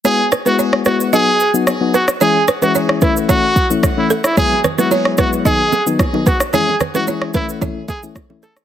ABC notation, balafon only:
X:1
M:4/4
L:1/16
Q:1/4=111
K:E
V:1 name="Balafon"
c z B B c z B z d2 z4 B z | c z B B c z B z c2 z4 A z | c z B B c z B z d2 z4 B z | c z B B c z B z c2 z4 A z |]